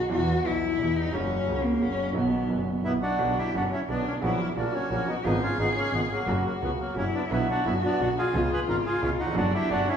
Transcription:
Already playing: grand piano F#4, cello F#4
0.08 grand piano E2 E3 G3 B3 E4, double bass E2, cello F#4
0.43 grand piano B1 B2 E3 G3 B3, double bass B1, cello E4
0.47 grand piano G4
0.77 grand piano E2 E3 G3 B3, double bass E2
0.81 grand piano G4
0.96 cello D#4
1.11 double bass F#1, grand piano F#2 C#3 F#3 A#3 F#4, cello C#4
1.47 double bass C#2, grand piano C#2 C#3 F#3 A#3 F#4
1.65 cello A#3
1.79 grand piano F#2 C#3 F#3 A#3 F#4, cello C#4
1.83 double bass F#1
2.12 grand piano B1 B2 D#3 F#3 B3
2.17 double bass B1, cello B3, grand piano F#4
2.47 grand piano F#1 F#2 D#3 F#3 B3
2.51 double bass F#1, grand piano F#4
2.83 grand piano B1 B2 D#3 F#3 B3, double bass B1, bandoneon B3 E4
2.87 grand piano F#4
3.02 bandoneon D4 F#4
3.19 grand piano B1 B2 D3 F#3 B3 F#4, double bass B1, cello D4
3.38 bandoneon E4 G4
3.54 grand piano F#1 F#2 D3 F#3 B3 F#4, double bass F#1, cello C#4, bandoneon D4 F#4
3.73 bandoneon C#4 E4
3.88 grand piano B1 B2 D3 F#3 B3 F#4, double bass B1, bandoneon B3 D4, cello D4
4.07 bandoneon A#3 C#4
4.21 grand piano A#1 A#2 C#3 F#3 A#3 F#4, double bass A#1, bandoneon F#3 B3, cello E4
4.40 bandoneon F#3 A#3
4.56 grand piano A#1 A#2 C#3 F#3 A#3 F#4, double bass A#1, bandoneon A#3 D4, cello F#4
4.74 bandoneon A#3 C#4
4.90 grand piano A#1 A#2 C#3 F#3 A#3 F#4, double bass A#1, bandoneon A#3 C#4
5.08 bandoneon B3 D#4
5.24 grand piano G#1 G#2 C#3 G#3 B3 F4, double bass G#1, bandoneon B3 D#4, cello G#4
5.42 bandoneon C#4 F4
5.59 double bass G#1, grand piano G#1 G#2 C#3 G#3 B3 F4, bandoneon B3 D#4
5.76 bandoneon A#3 C#4
5.93 double bass G#1, grand piano G#1 G#2 C#3 G#3 B3 F4, bandoneon G#3 B3
6.12 bandoneon F#3 A#3
6.27 double bass F#1, grand piano F#2 C#3 F#3 A#3 F#4, cello F#4
6.45 bandoneon F#3 A#3
6.62 double bass C#2, grand piano C#2 C#3 F#3 A#3 F#4, bandoneon F#3 B3
6.80 bandoneon F#3 A#3
6.96 double bass F#1, grand piano F#2 C#3 F#3 A#3 F#4, bandoneon A#3 C#4, cello E4
7.14 bandoneon B3 D4
7.31 grand piano B1 B2 D3 F#3 B3 F#4, double bass B1, bandoneon B3 E4, cello F#4
7.50 bandoneon D4 F#4
7.65 grand piano F#1 F#2 D3 F#3 B3 F#4, double bass F#1, bandoneon B3 E4
7.85 bandoneon B3 D4
8.00 grand piano B1 B2 D3 F#3 B3 F#4, double bass B1, bandoneon D4 F#4
8.18 bandoneon F4 G#4
8.33 grand piano C#2 C#3 G#3 B3 F4, double bass C#2, cello F4
8.53 bandoneon G#4 B4
8.68 grand piano G#1 G#2 C#3 G#3 B3 F4, double bass G#1, bandoneon F4 A#4
8.86 bandoneon F4 G#4
9.01 grand piano C#2 C#3 G#3 B3 F4, double bass C#2, bandoneon C#4 F4
9.19 grand piano D#2, bandoneon D#4 F#4
9.27 grand piano E2, cello C#4
9.31 grand piano F2 F#2 D3 F#3
9.35 double bass F#1, grand piano B3 F#4, cello D4, bandoneon D4 F#4
9.54 bandoneon E4 G4
9.69 double bass F#1, grand piano F#2 D3 F#3 B3 F#4, bandoneon D4 F#4
9.88 bandoneon C#4 E4

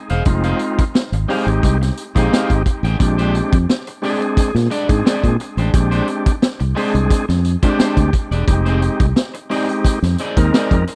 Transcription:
0.09 fingered electric bass E1, clean electric guitar D#4 G#4 C5 F5, closed hi-hat
0.25 fingered electric bass F1, tonewheel organ G#3 C4 D#4 F4, muted clean electric guitar stroke, kick, closed hi-hat
0.43 clean electric guitar D#4 G#4 C5 F5, closed hi-hat
0.59 muted clean electric guitar stroke, closed hi-hat
0.79 muted fingered electric bass stroke, muted clean electric guitar stroke, kick, closed hi-hat
0.95 muted clean electric guitar stroke, snare, closed hi-hat
1.12 fingered electric bass G#1, muted clean electric guitar stroke, closed hi-hat
1.28 tonewheel organ G3 C4 D#4 G4, clean electric guitar D#4 G#4 C5 F5, open hi-hat
1.35 tonewheel organ G#3
1.46 fingered electric bass G#1, muted clean electric guitar stroke, closed hi-hat
1.63 fingered electric bass C2, muted clean electric guitar stroke, kick, closed hi-hat
1.82 muted clean electric guitar stroke, snare, closed hi-hat
1.97 closed hi-hat
2.15 fingered electric bass A#1, tonewheel organ G#3 C4 D#4 G4, clean electric guitar D#4 G#4 C5 F5, kick, closed hi-hat
2.32 clean electric guitar D#4 G#4 C5 F5, snare, closed hi-hat
2.50 fingered electric bass G#1, kick, closed hi-hat
2.66 muted clean electric guitar stroke, kick, closed hi-hat
2.83 fingered electric bass A1, clean electric guitar D#4 G#4 C5 G5, closed hi-hat
2.99 fingered electric bass A#1, tonewheel organ G#3 C4 D4 G4, muted clean electric guitar stroke, kick, closed hi-hat
3.18 clean electric guitar G#3 D4 G4 C5, closed hi-hat
3.35 muted clean electric guitar stroke, closed hi-hat
3.53 fingered electric bass F2, muted clean electric guitar stroke, kick, closed hi-hat
3.70 muted clean electric guitar stroke, snare, closed hi-hat
3.87 muted clean electric guitar stroke, closed hi-hat
4.02 tonewheel organ G#3 C4 D4 G4, clean electric guitar G#3 D4 G4 D5, open hi-hat
4.09 tonewheel organ G#4
4.21 muted clean electric guitar stroke, closed hi-hat
4.37 muted fingered electric bass stroke, muted clean electric guitar stroke, kick, closed hi-hat
4.55 fingered electric bass A#2, muted clean electric guitar stroke, snare, closed hi-hat
4.70 clean electric guitar G#3 D4 G4 D5, closed hi-hat
4.89 fingered electric bass G#2, tonewheel organ G#3 C4 D4 G#4, muted clean electric guitar stroke, kick, closed hi-hat
5.05 clean electric guitar G#3 D4 G4 D5, snare, closed hi-hat
5.23 fingered electric bass A#2, kick, closed hi-hat
5.40 muted clean electric guitar stroke, closed hi-hat
5.57 fingered electric bass A1, clean electric guitar G#3 D4 G4 C5, closed hi-hat
5.73 fingered electric bass A#1, tonewheel organ G#3 C4 C#4 G4, muted clean electric guitar stroke, kick, closed hi-hat
5.80 tonewheel organ D4
5.91 clean electric guitar G#3 D4 G4 C5, closed hi-hat
6.08 muted clean electric guitar stroke, closed hi-hat
6.26 muted fingered electric bass stroke, muted clean electric guitar stroke, kick, closed hi-hat
6.42 muted clean electric guitar stroke, snare, closed hi-hat
6.60 fingered electric bass C2, muted clean electric guitar stroke, closed hi-hat
6.75 clean electric guitar G#3 D4 G4 C5, tonewheel organ G#3 C4 D4 G#4, open hi-hat
6.94 fingered electric bass C2, muted clean electric guitar stroke, closed hi-hat
7.10 muted clean electric guitar stroke, muted fingered electric bass stroke, kick, closed hi-hat
7.29 fingered electric bass F2, muted clean electric guitar stroke, snare, closed hi-hat
7.45 closed hi-hat
7.63 tonewheel organ G#3 C4 D4 F4, clean electric guitar G#3 D4 G4 C5, kick, closed hi-hat
7.70 tonewheel organ G4
7.78 clean electric guitar G#3 D4 G4 C5, muted fingered electric bass stroke, snare, closed hi-hat
7.97 fingered electric bass D2, kick, closed hi-hat
8.13 muted clean electric guitar stroke, kick, closed hi-hat
8.31 fingered electric bass E1, clean electric guitar G#3 D4 G4 D5, closed hi-hat
8.47 fingered electric bass F1, tonewheel organ G3 C4 D#4 G4, muted clean electric guitar stroke, kick, closed hi-hat
8.54 tonewheel organ G#3
8.66 clean electric guitar C4 D#4 G#4 C5, closed hi-hat
8.81 muted clean electric guitar stroke, closed hi-hat
9.00 fingered electric bass C2, muted clean electric guitar stroke, kick, closed hi-hat
9.16 muted clean electric guitar stroke, snare, closed hi-hat
9.34 muted clean electric guitar stroke, closed hi-hat
9.50 tonewheel organ G#3 C4 D#4 G4, clean electric guitar C4 D#4 G#4 D5, open hi-hat
9.69 muted clean electric guitar stroke, closed hi-hat
9.84 muted fingered electric bass stroke, muted clean electric guitar stroke, kick, closed hi-hat
10.02 fingered electric bass F2, muted clean electric guitar stroke, snare, closed hi-hat
10.18 clean electric guitar C4 D#4 G#4 D5, closed hi-hat
10.37 fingered electric bass D#2, tonewheel organ G#3 C4 D#4 A#4, muted clean electric guitar stroke, kick, closed hi-hat
10.54 clean electric guitar C4 D#4 G#4 D5, snare, closed hi-hat
10.71 fingered electric bass F2, kick, closed hi-hat
10.87 muted clean electric guitar stroke, closed hi-hat

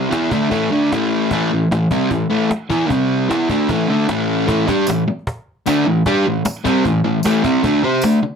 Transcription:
Already playing: distorted electric guitar G3 C4
0.10 distorted electric guitar E3 B3 E4, cajon slap
0.31 distorted electric guitar D3 A3 D4, cajon bass
0.50 distorted electric guitar A2 E3 A3, cajon bass
0.71 distorted electric guitar D3 A3 D4
0.92 distorted electric guitar A2 E3 A3, cajon slap
1.31 distorted electric guitar A2 E3 A3, cajon bass
1.52 distorted electric guitar A2 E3
1.71 distorted electric guitar A2 E3, cajon slap
1.91 distorted electric guitar C3 G3 C4, cajon bass
2.03 cajon slap
2.10 distorted electric guitar A2 E3, cajon bass
2.30 distorted electric guitar A2 E3 A3
2.50 muted distorted electric guitar stroke, cajon slap
2.69 distorted electric guitar E3 B3 E4, cajon bass
2.89 distorted electric guitar C3 G3 C4, cajon bass
3.29 distorted electric guitar E3 B3 E4, cajon slap
3.49 distorted electric guitar D3 A3 D4, cajon bass
3.69 distorted electric guitar A2 E3 A3, cajon bass
3.89 distorted electric guitar D3 A3 D4
4.09 distorted electric guitar A2 E3 A3, cajon slap
4.47 distorted electric guitar A2 E3 A3, cajon bass
4.67 distorted electric guitar G3 D4 G4, cajon bass
4.87 distorted electric guitar A2 E3, cajon slap, tambourine
5.08 muted distorted electric guitar stroke
5.19 cajon slap
5.27 cajon bass
5.66 distorted electric guitar D3 A3 D4, cajon slap, tambourine
5.78 cajon slap
5.86 distorted electric guitar A2 E3
6.06 distorted electric guitar G3 D4 G4, cajon bass
6.26 distorted electric guitar A2 E3
6.45 muted distorted electric guitar stroke, cajon slap, tambourine
6.64 distorted electric guitar C3 G3 C4, cajon bass
6.76 cajon slap
6.85 distorted electric guitar A2 E3, cajon bass
7.05 distorted electric guitar A2 E3
7.23 distorted electric guitar A2 E3 A3, cajon slap, tambourine
7.43 distorted electric guitar C3 G3 C4, cajon bass
7.63 distorted electric guitar D3 A3 D4, cajon bass
7.84 distorted electric guitar C4 G4 C5
8.02 distorted electric guitar D3 A3, cajon slap, tambourine
8.23 muted distorted electric guitar stroke

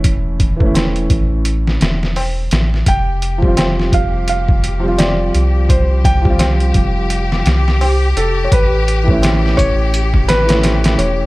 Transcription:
Already playing: sub bass E1, upright piano E3 A3 C#4 E4
0.04 kick, closed hi-hat
0.40 kick, closed hi-hat
0.56 upright piano E3 A3, kick
0.63 upright piano C#4 E4
0.74 snare, closed hi-hat, tabla na
0.96 closed hi-hat
1.10 sub bass A1, kick, closed hi-hat
1.45 closed hi-hat
1.67 snare
1.81 sub bass E1, snare, closed hi-hat
2.03 snare
2.16 open hi-hat, tabla na
2.51 sub bass A1, snare, closed hi-hat
2.74 snare
2.86 sub bass F1, string section G4, felt piano G5, kick, closed hi-hat
3.22 closed hi-hat
3.38 upright piano F3 G3
3.42 upright piano C4, kick
3.47 upright piano F4
3.57 snare, closed hi-hat, tabla na
3.80 snare
3.92 sub bass F1, felt piano F5, kick, closed hi-hat
4.28 felt piano F5, closed hi-hat
4.49 kick
4.64 closed hi-hat
4.80 upright piano F3 G3
4.85 upright piano C4 F4
4.98 felt piano D5, snare, closed hi-hat, tabla na
5.34 sub bass C2, closed hi-hat
5.69 felt piano C5, kick, closed hi-hat
6.04 felt piano G5, kick, closed hi-hat
6.21 upright piano F3 G3, kick
6.27 upright piano C4 F4
6.39 snare, closed hi-hat, tabla na
6.60 closed hi-hat
6.74 sub bass F1, kick, closed hi-hat
7.10 closed hi-hat
7.32 snare
7.46 sub bass C2, snare, closed hi-hat
7.68 snare
7.81 felt piano G4, open hi-hat, tabla na
8.16 sub bass F1, felt piano A4, closed hi-hat
8.44 felt piano C#5
8.52 sub bass A1, felt piano B4, kick, closed hi-hat
8.88 closed hi-hat
9.04 upright piano E3 A3
9.08 upright piano C#4, kick
9.13 upright piano E4
9.22 snare, closed hi-hat, tabla na
9.46 snare
9.57 sub bass A1, felt piano C#5, kick, closed hi-hat
9.94 closed hi-hat
10.14 kick
10.28 felt piano B4, snare, closed hi-hat
10.45 upright piano E3 A3, closed hi-hat
10.50 upright piano C#4 E4, snare
10.63 snare, closed hi-hat, tabla na
10.84 snare, closed hi-hat
10.98 sub bass E1, felt piano C#5, closed hi-hat

